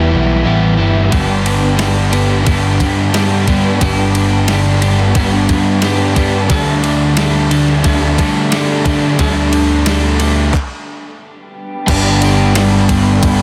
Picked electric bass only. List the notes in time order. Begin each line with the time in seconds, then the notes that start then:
Already playing: E1
0.13 B1
0.46 A1
0.79 G1
1.13 G1
2.47 G1
2.80 G2
3.82 G1
5.16 G1
5.49 G2
6.50 D2
7.85 D2
8.19 D3
9.19 D2
11.88 G1
13.23 G1